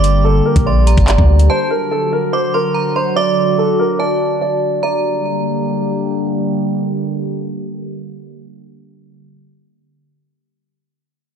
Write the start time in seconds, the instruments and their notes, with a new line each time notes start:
Already playing: 808-style bass G1, ambient pad D3 G3 A#3 G4, grand piano D5, synth bell D6
0.04 closed hi-hat
0.25 grand piano A4
0.46 grand piano A#4
0.56 808-style bass A#1, kick, closed hi-hat
0.66 grand piano D5, synth bell C6
0.87 synth bell A#5, closed hi-hat
0.97 808-style bass G1, kick, closed hi-hat
1.08 grand piano D5, clap, closed hi-hat
1.18 808-style bass D2, kick
1.39 closed hi-hat
1.50 ambient pad F#3 F#4, grand piano C5, synth bell A5
1.70 grand piano A#4
1.91 grand piano A4
2.13 grand piano A#4
2.33 grand piano C5, synth bell D6
2.54 grand piano A#4, synth bell C6
2.74 synth bell A#5
2.96 grand piano C5, synth bell C6
3.16 grand piano D5, synth bell D6
3.58 grand piano A4
3.79 grand piano A#4
3.99 grand piano D5, synth bell A5
4.41 grand piano D5
4.83 ambient pad D3 G3 A#3 G4, grand piano D5, synth bell A#5